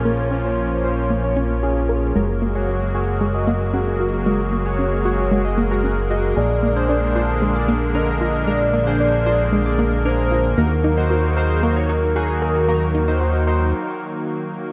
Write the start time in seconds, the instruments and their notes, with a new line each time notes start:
Already playing: analog synth bass A#1, analog synth pad F3 A#3 C#4
0.05 synth arpeggio sound A#3, analog polysynth C#4 F4 A#4
0.31 synth arpeggio sound C#4
0.45 analog polysynth C#4 F4 C5
0.58 synth arpeggio sound F4
0.84 analog polysynth C#4 F4 C5, synth arpeggio sound A#4
1.10 synth arpeggio sound A#3
1.23 analog polysynth C#4 F4 C#5
1.37 synth arpeggio sound C#4
1.63 analog polysynth C#4 F4 G#4, synth arpeggio sound F4
1.89 synth arpeggio sound A#4
2.15 analog synth bass F#1, analog synth pad F#3 G#3 A#3, synth arpeggio sound G#3, analog polysynth F#4 G#4 A#4
2.42 synth arpeggio sound A#3
2.55 analog polysynth F#4 G#4 C#5
2.68 synth arpeggio sound C#4
2.94 synth arpeggio sound F#4, analog polysynth F#4 G#4 C#5
3.21 synth arpeggio sound G#3
3.34 analog polysynth F#4 G#4 D#5
3.47 synth arpeggio sound A#3
3.73 synth arpeggio sound C#4, analog polysynth F#4 G#4 A#4
4.00 synth arpeggio sound F#4
4.26 synth arpeggio sound G#3, analog polysynth F#4 G#4 A#4
4.52 synth arpeggio sound A#3
4.66 analog polysynth F#4 G#4 C#5
4.79 synth arpeggio sound C#4
5.05 analog polysynth F#4 G#4 C#5, synth arpeggio sound F#4
5.31 synth arpeggio sound G#3
5.45 analog polysynth F#4 G#4 D#5
5.58 synth arpeggio sound A#3
5.71 analog polysynth F#4 G#4 A#4
5.84 synth arpeggio sound C#4, analog polysynth F#4 G#4 A#4
6.10 synth arpeggio sound F#4, analog polysynth F#4 G#4 D#5
6.37 analog synth bass A#1, analog synth pad D3, synth arpeggio sound G#3, analog polysynth D4 G#4 A#4, soft synth lead D5
6.63 synth arpeggio sound A#3
6.76 analog polysynth D4 G#4 C5
6.89 synth arpeggio sound D4, soft synth lead D5
7.16 analog polysynth D4 G#4 C5, synth arpeggio sound F4
7.42 synth arpeggio sound G#3, soft synth lead G#4
7.55 analog polysynth D4 G#4 D5
7.68 synth arpeggio sound A#3
7.94 analog polysynth D3 G#4 A#4, synth arpeggio sound D4, soft synth lead D#5
8.21 synth arpeggio sound F4
8.47 synth arpeggio sound G#3, analog polysynth D4 G#4 A#4, soft synth lead D5
8.73 synth arpeggio sound A#3
8.87 analog polysynth D4 G#4 C5
9.00 synth arpeggio sound D4, soft synth lead D5
9.26 analog polysynth D4 G#4 C5, synth arpeggio sound F4
9.52 synth arpeggio sound G#3, soft synth lead G#4
9.66 analog polysynth D4 G#4 D5
9.79 synth arpeggio sound A#3
10.05 synth arpeggio sound D4, analog polysynth D4 G#4 A#4, soft synth lead C5
10.31 synth arpeggio sound F4
10.57 analog synth bass D#2, analog synth pad D#3 F#3, synth arpeggio sound A#3, analog polysynth D#4 F#4 A#4, soft synth lead A#4
10.84 synth arpeggio sound D#4
10.97 analog polysynth D#4 F#4 C5
11.10 synth arpeggio sound F#4, soft synth lead A#4
11.37 analog polysynth D#4 F#4 C5, soft synth lead G#4, synth arpeggio sound A#4
11.63 synth arpeggio sound A#3, soft synth lead A#4
11.76 analog polysynth D#4 F#4 C#5
11.89 synth arpeggio sound D#4
12.16 analog polysynth D#4 F#4 G#4, synth arpeggio sound F#4
12.42 synth arpeggio sound A#4
12.68 synth arpeggio sound A#3, analog polysynth D#4 F#4 A#4
12.95 synth arpeggio sound D#4
13.08 analog polysynth D#4 F#4 C5
13.21 synth arpeggio sound F#4
13.47 analog polysynth D#4 F#4 C5, synth arpeggio sound A#4